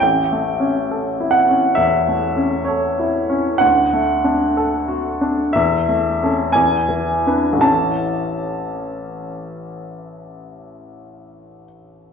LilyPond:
\new Staff \with { instrumentName = "Upright piano" } { \time 4/4 \key a \major \tempo 4 = 61 << { g''4. fis''8 e''4 cis''8 r8 | fis''2 e''4 gis''4 | a''2.~ a''8 r8 | } \\ { \tuplet 3/2 { a,,8 a8 cis'8 a'8 e'8 cis'8 e,8 a8 cis'8 a'8 e'8 cis'8 } | \tuplet 3/2 { d,8 a8 d'8 a'8 fis'8 d'8 e,8 a8 <cis' a'>8 e,8 e8 <d' b'>8 } | <a,, e cis' a'>1 | } >> }